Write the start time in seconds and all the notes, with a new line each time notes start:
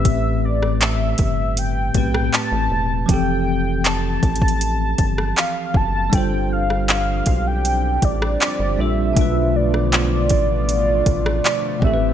Already playing: A1 A2 A3 C4 G4 B4 E5
0.05 kick, closed hi-hat
0.45 D5
0.63 cross-stick
0.81 E5, clap, closed hi-hat
1.18 G1, kick, closed hi-hat
1.57 G5, closed hi-hat
1.94 B1 A2 A3 C4 G4 B4 G5, kick, closed hi-hat
2.14 cross-stick
2.34 A5, clap, closed hi-hat
2.52 A1
2.71 E1
3.06 F1 E3 F3 C4, kick, closed hi-hat
3.11 G4 A4 G5
3.85 A5, clap, closed hi-hat
4.23 A1, kick, closed hi-hat
4.36 closed hi-hat
4.42 kick
4.48 closed hi-hat
4.61 closed hi-hat
4.98 G1, kick, closed hi-hat
5.18 cross-stick
5.37 F5, clap, closed hi-hat
5.74 F#1 A5, kick
6.10 G1 F3 G3 C4 D4 F4 G4, kick, closed hi-hat
6.14 A4 C5 G5
6.53 F5
6.70 cross-stick
6.89 F5, clap, closed hi-hat
7.26 B1, kick, closed hi-hat
7.47 G5
7.65 closed hi-hat
8.02 A1 D5, kick, closed hi-hat
8.22 cross-stick
8.41 D5, clap, closed hi-hat
8.60 G1
8.77 A#1 G3 D4 F4 A4 E5
8.81 C5
9.13 B1 B2 D3 A3 B3 F4, kick, closed hi-hat
9.17 D4 F4 B4
9.56 D5
9.74 cross-stick
9.93 clap, closed hi-hat
10.30 A1, kick, closed hi-hat
10.69 closed hi-hat
11.06 A1, kick, closed hi-hat
11.26 cross-stick
11.45 D5, clap, closed hi-hat
11.79 A1 A2 E3 G3 A3 C4 G4, kick
11.84 G4 A4 E5
11.94 B4